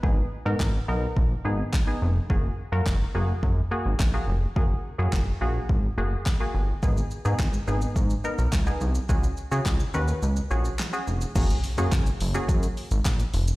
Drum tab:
CC |----------------|----------------|----------------|----------------|
HH |----------------|----------------|----------------|----------------|
SH |----------------|----------------|----------------|xxxxxxxxxxxxxxxx|
CP |----x-------x---|----x-------x---|----x-------x---|----x-------x---|
SD |----o-------o---|----o-------o---|----o-------o---|----o-------o---|
BD |o---o---o---o---|o---o---o---o---|o---o---o---o---|o---o---o---o---|

CC |----------------|x---------------|
HH |----------------|xxoxxxoxxxoxxxox|
SH |xxxxxxxxxxxxxxxx|xxxxxxxxxxxxxxxx|
CP |----x-------x---|----x-------x---|
SD |----o-------o---|----o-------o---|
BD |o---o-----------|o---o---o---o---|